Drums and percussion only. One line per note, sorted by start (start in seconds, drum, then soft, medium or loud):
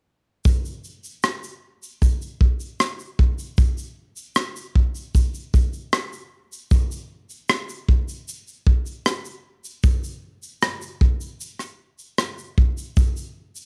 0.45 kick medium
0.45 shaker medium
0.65 shaker soft
0.84 shaker soft
1.04 shaker soft
1.23 cross-stick medium
1.23 shaker medium
1.43 shaker soft
1.83 shaker soft
2.02 kick medium
2.02 shaker medium
2.22 shaker soft
2.41 kick medium
2.60 shaker soft
2.80 cross-stick medium
2.80 shaker medium
2.99 shaker soft
3.19 kick medium
3.39 shaker soft
3.58 kick medium
3.58 shaker medium
3.78 shaker soft
4.17 shaker soft
4.36 cross-stick medium
4.36 shaker medium
4.56 shaker soft
4.75 kick medium
4.95 shaker soft
5.15 kick medium
5.15 shaker medium
5.34 shaker soft
5.54 kick medium
5.54 shaker soft
5.73 shaker soft
5.93 cross-stick medium
5.93 shaker medium
6.13 shaker soft
6.53 shaker medium
6.71 kick medium
6.71 shaker medium
6.91 shaker soft
7.30 shaker soft
7.49 cross-stick loud
7.49 shaker medium
7.69 shaker soft
7.88 kick medium
8.09 shaker soft
8.28 shaker medium
8.47 shaker soft
8.66 kick medium
8.86 shaker soft
9.06 cross-stick medium
9.06 shaker medium
9.25 shaker soft
9.64 shaker medium
9.84 kick loud
9.84 shaker medium
10.04 shaker soft
10.43 shaker soft
10.62 cross-stick medium
10.62 shaker medium
10.82 shaker soft
11.01 kick medium
11.21 shaker soft
11.41 shaker medium
11.59 cross-stick soft
11.59 shaker soft
11.99 shaker soft
12.18 cross-stick medium
12.18 shaker medium
12.38 shaker soft
12.58 kick medium
12.78 shaker medium
12.97 kick loud
12.97 shaker medium
13.17 shaker soft
13.56 shaker soft